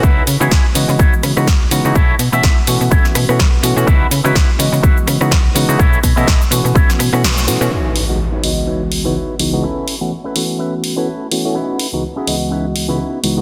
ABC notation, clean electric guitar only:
X:1
M:4/4
L:1/16
Q:"Swing 16ths" 1/4=125
K:C#m
V:1 name="Clean electric guitar"
[DEFB]2 z [DEFG]2 z3 [DEFc] z6 z | [EAc]2 z [EAe]2 z3 [EAc] z6 z | [DEFB]2 z [DEFB]2 z3 [DEFB] z6 z | [EAc]2 z [EAd]2 z3 [EAc] z6 z |
[DEFBc]2 z3 [DEFBc] z2 [DEFBc] z2 [DEFBc]3 z2 | [CEAB]2 z3 [CEAB] z2 [CEAB] z2 [CEAB]3 z2 | [CDEFB]2 z3 [CDEFG] z2 [CDEFB] z2 [CDEFB]3 z2 |]